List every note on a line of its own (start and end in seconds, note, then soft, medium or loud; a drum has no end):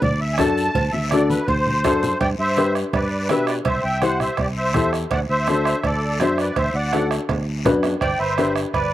0.02 0.38 D2 loud
0.02 0.20 D5 loud
0.02 bombo low medium
0.02 cowbell medium
0.02 low conga medium
0.02 long guiro medium
0.20 0.38 E5 medium
0.33 0.36 G#5 medium
0.38 0.68 F#2 loud
0.38 0.64 D4 medium
0.38 0.64 F#4 medium
0.38 0.65 A4 medium
0.38 0.91 A5 loud
0.38 bombo low medium
0.38 bombo rim medium
0.38 cowbell medium
0.38 high conga medium
0.38 short guiro medium
0.58 short guiro medium
0.75 0.90 D2 loud
0.75 bombo low medium
0.75 cowbell loud
0.75 low conga medium
0.75 long guiro medium
0.92 1.37 D2 loud
0.92 1.10 E5 medium
0.92 high conga medium
1.10 1.38 D4 medium
1.10 1.38 F#4 medium
1.10 1.38 A4 medium
1.10 1.29 D5 medium
1.10 bombo rim medium
1.10 cowbell medium
1.10 high conga medium
1.10 short guiro medium
1.29 1.47 B4 medium
1.29 high conga medium
1.29 short guiro medium
1.47 1.84 D2 loud
1.47 2.18 C5 loud
1.47 bombo low medium
1.47 cowbell medium
1.47 long guiro medium
1.66 low conga medium
1.84 2.13 F#2 loud
1.84 2.10 D4 medium
1.84 2.10 F#4 medium
1.84 2.10 A4 medium
1.84 bombo low medium
1.84 bombo rim medium
1.84 cowbell medium
1.84 short guiro medium
2.03 low conga medium
2.03 short guiro medium
2.20 2.35 G2 medium
2.20 2.30 D5 medium
2.20 2.29 G5 loud
2.20 bombo low medium
2.20 bombo rim medium
2.20 cowbell loud
2.20 high conga soft
2.20 long guiro medium
2.39 2.82 G2 medium
2.39 2.74 C5 medium
2.39 2.73 E5 loud
2.57 2.83 D4 medium
2.57 2.83 G4 medium
2.57 2.83 B4 medium
2.57 bombo rim medium
2.57 cowbell medium
2.57 high conga medium
2.57 short guiro medium
2.75 bombo rim medium
2.75 short guiro medium
2.93 3.29 G2 medium
2.93 3.28 B4 medium
2.93 3.28 D5 medium
2.93 bombo low medium
2.93 bombo rim medium
2.93 cowbell medium
2.93 long guiro medium
3.29 3.59 B2 medium
3.29 3.55 D4 medium
3.29 3.56 G4 medium
3.29 3.46 B4 medium
3.29 3.56 B4 medium
3.29 3.46 E5 medium
3.29 bombo rim medium
3.29 cowbell medium
3.29 high conga medium
3.29 low timbale medium
3.29 short guiro medium
3.47 3.56 B4 medium
3.47 3.56 D5 medium
3.47 bombo rim medium
3.47 short guiro medium
3.65 3.80 C2 medium
3.65 3.83 C5 medium
3.65 3.82 E5 medium
3.65 bombo low medium
3.65 bombo rim medium
3.65 cowbell loud
3.65 high conga soft
3.65 long guiro medium
3.83 4.28 C2 medium
3.83 4.01 E5 medium
3.83 4.03 G5 medium
4.02 4.28 E4 medium
4.02 4.28 G4 medium
4.02 4.19 C5 medium
4.02 4.28 C5 medium
4.02 4.19 F#5 medium
4.02 bombo rim medium
4.02 cowbell medium
4.02 high conga medium
4.02 short guiro medium
4.20 4.38 C5 medium
4.20 4.38 E5 medium
4.20 bombo rim medium
4.20 low conga medium
4.20 short guiro medium
4.37 4.74 C2 medium
4.37 4.48 G4 medium
4.37 4.48 D5 medium
4.37 bombo low medium
4.37 bombo rim medium
4.37 cowbell medium
4.37 high conga soft
4.37 long guiro medium
4.57 4.91 C5 medium
4.57 4.91 E5 medium
4.74 5.04 E2 loud
4.74 5.00 E4 medium
4.74 5.00 G4 medium
4.74 5.01 A4 medium
4.74 bombo low medium
4.74 bombo rim medium
4.74 cowbell medium
4.74 high conga medium
4.74 low conga medium
4.74 short guiro medium
4.93 bombo rim medium
4.93 short guiro medium
5.11 5.26 D2 medium
5.11 5.20 D5 medium
5.11 5.20 F#5 medium
5.11 bombo low medium
5.11 bombo rim medium
5.11 cowbell loud
5.11 high conga soft
5.11 long guiro medium
5.29 5.73 D2 medium
5.29 5.80 C5 medium
5.29 5.86 E5 medium
5.47 5.74 D4 medium
5.47 5.74 F#4 medium
5.47 5.74 A4 medium
5.47 bombo rim medium
5.47 cowbell medium
5.47 high conga medium
5.47 short guiro medium
5.65 bombo rim medium
5.65 short guiro medium
5.83 6.20 D2 loud
5.83 6.18 A4 medium
5.83 6.18 D5 medium
5.83 bombo low medium
5.83 bombo rim medium
5.83 cowbell medium
5.83 high conga soft
5.83 long guiro medium
6.20 6.49 F#2 loud
6.20 6.46 D4 medium
6.20 6.46 F#4 medium
6.20 6.38 C5 medium
6.20 6.47 C5 medium
6.20 6.38 E5 medium
6.20 bombo rim medium
6.20 cowbell medium
6.20 high conga medium
6.20 low timbale medium
6.20 short guiro medium
6.38 6.56 B4 medium
6.38 6.56 D5 medium
6.38 bombo rim medium
6.38 short guiro medium
6.56 6.71 D2 medium
6.56 6.74 C5 medium
6.56 6.76 E5 medium
6.56 bombo low medium
6.56 bombo rim medium
6.56 cowbell loud
6.56 high conga soft
6.56 long guiro medium
6.74 7.18 D2 medium
6.74 7.09 D5 medium
6.74 7.09 F#5 medium
6.93 7.18 D4 medium
6.93 7.19 F#4 medium
6.93 7.19 A4 medium
6.93 bombo rim medium
6.93 cowbell medium
6.93 high conga medium
6.93 high timbale medium
6.93 short guiro medium
7.11 bombo rim medium
7.11 short guiro medium
7.29 7.65 D2 medium
7.29 bombo low medium
7.29 bombo rim medium
7.29 cowbell medium
7.29 high conga soft
7.29 low timbale medium
7.29 long guiro medium
7.65 7.94 F#2 loud
7.65 7.91 D4 medium
7.65 7.91 F#4 medium
7.65 7.91 B4 medium
7.65 bombo low medium
7.65 bombo rim medium
7.65 cowbell medium
7.65 high conga medium
7.65 low conga medium
7.65 low timbale medium
7.65 short guiro medium
7.83 bombo rim medium
7.83 low timbale medium
7.83 short guiro medium
8.01 8.16 G1 medium
8.01 8.19 D5 medium
8.01 8.18 G5 medium
8.01 bombo low medium
8.01 bombo rim medium
8.01 cowbell loud
8.01 high conga soft
8.01 long guiro medium
8.19 8.64 G1 medium
8.19 8.54 B4 medium
8.19 8.54 C5 medium
8.19 8.53 E5 medium
8.38 8.64 D4 medium
8.38 8.64 G4 medium
8.38 8.64 B4 medium
8.38 bombo rim medium
8.38 cowbell medium
8.38 high conga medium
8.38 short guiro medium
8.56 bombo rim medium
8.56 short guiro medium
8.73 8.94 G1 medium
8.73 8.94 B4 medium
8.73 8.94 D5 medium
8.73 bombo low medium
8.73 bombo rim medium
8.73 cowbell medium
8.73 high conga soft
8.73 long guiro medium